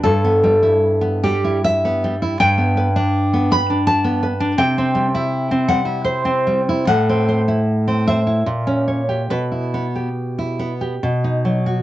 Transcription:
\new Staff \with { instrumentName = "Nylon-string guitar" } { \time 3/4 \key e \minor \tempo 4 = 77 << { a'4. g'8 e''4 | g''4. b''8 a''4 | g''4. fis''8 c''4 | fis''4. e''4. |
b'2~ b'8 r8 | } \\ { g,16 b16 g16 e'8 b16 g16 e'8 b16 g16 e'16 | g,16 b16 b'16 d'8 b16 b'16 d'8 b16 b'16 d'16 | c16 c'16 g16 e'8 c'16 g16 e'8 c'16 g16 e'16 | a,16 c'16 c''16 e'8 c'16 c''16 e'16 ais,16 cis'16 cis''16 g'16 |
b,16 e'16 b16 g'8 e'16 b16 g'16 b,16 dis'16 fis16 fis'16 | } >> }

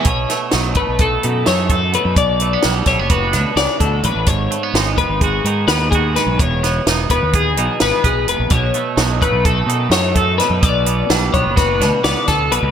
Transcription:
<<
  \new Staff \with { instrumentName = "Clean electric guitar" } { \time 9/8 \key b \mixolydian \tempo 4. = 85 cis''4 r8 b'8 a'4 cis''8 a'8 b'8 | d''4 r8 cis''8 b'4 d''8 a'8 b'8 | cis''4 r8 b'8 gis'4 b'8 gis'8 b'8 | cis''4 r8 b'8 gis'4 b'8 gis'8 b'8 |
cis''4 r8 b'8 a'4 cis''8 a'8 b'8 | d''4 r8 cis''8 b'4 d''8 a'8 b'8 | }
  \new Staff \with { instrumentName = "Clean electric guitar" } { \time 9/8 \key b \mixolydian << { r8 a8 dis'8 a8 a'8 dis'8 a8 a'4 | r8 a16 b16 d'8 a16 b16 fis'8 d'2 | r8 a16 b16 dis'8 b8 fis'8 dis'8 b8 fis'4 | r8 b8 dis'8 b8 gis'8 dis'8 b8 b'4 |
r8 a8 dis'8 a8 a'8 dis'8 a8 a'4 | r8 b8 d'8 b8 fis'8 d'8 b8 a'4 | } \\ { b,4 fis4. fis,4. b,8 | b,4 g4. b,8 cis8 b,8 a,8 | gis,4 gis4. dis4. gis,8 | e,2~ e,8 b,4. e,8 |
b,4 fis4. fis,4. b,8 | b,4 g4. b,4. b,8 | } >> }
  \new Staff \with { instrumentName = "Fingered electric bass" } { \clef bass \time 9/8 \key b \mixolydian b,,8 r8 b,,8 a,,16 b,,8. b,8 fis,4~ fis,16 fis,16 | b,,4 b,,8 b,,16 fis,,8. d,16 r16 cis,16 r16 d,8 b,,16 a,,16 | gis,,8 r8 gis,,8 fis,,16 gis,,8. gis,8 dis,4~ dis,16 b,,16 | e,,4 e,,8 e,,16 dis,8. b,,16 r16 gis,,16 r16 b,,8 e,,16 ais,,16 |
b,,8 r8 b,,8 a,,16 b,,8. b,8 fis,4~ fis,16 fis,16 | b,,4 b,,8 b,,16 fis,,8. d,16 r16 cis,16 r16 d,8 b,,16 cis,16 | }
  \new DrumStaff \with { instrumentName = "Drums" } \drummode { \time 9/8 <hh bd>8 <hh sn>8 <hh sn>8 <hh bd>8 <hh bd>8 hh8 <hh sn>8 <hh bd>8 hh8 | <hh bd>8 hh8 <hh sn>8 <hh bd sn>8 <hh bd>8 <hh sn>8 <hh sn>8 <hh bd>8 hh8 | <hh bd>8 hh8 <hh sn>8 <hh bd>8 <hh bd>8 hh8 <hh sn>8 <hh bd>8 <hh sn>8 | <hh bd>8 <hh sn>8 <hh sn>8 <hh bd>8 <hh bd>8 hh8 <hh sn>8 <hh bd>8 hh8 |
<hh bd>8 hh8 <hh sn>8 <hh bd>8 <hh bd>8 hh8 <hh sn>8 <hh bd>8 <hh sn>8 | <hh bd>8 hh8 <hh sn>8 <hh bd>8 <hh bd sn>8 <hh sn>8 <hh sn>8 <hh bd sn>8 hh8 | }
>>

